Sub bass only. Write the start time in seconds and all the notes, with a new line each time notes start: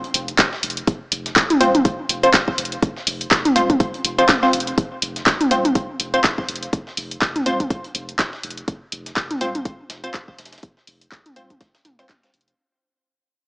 0.14 F1
0.63 F1
1.12 F1
1.36 F1
1.61 D#1
2.09 F1
2.58 F1
3.07 F1
3.31 F1
3.56 D#1
4.05 F1
4.53 F1
5.02 F1
5.27 F1
5.51 D#1
6.00 F1
6.48 F1
6.97 F1
7.22 F1
7.46 D#1
7.95 F1
8.44 F1
8.92 F1
9.17 F1
9.41 D#1
9.90 F1
10.39 F1
10.87 F1
11.12 F1
11.36 D#1
11.85 F1
12.34 F1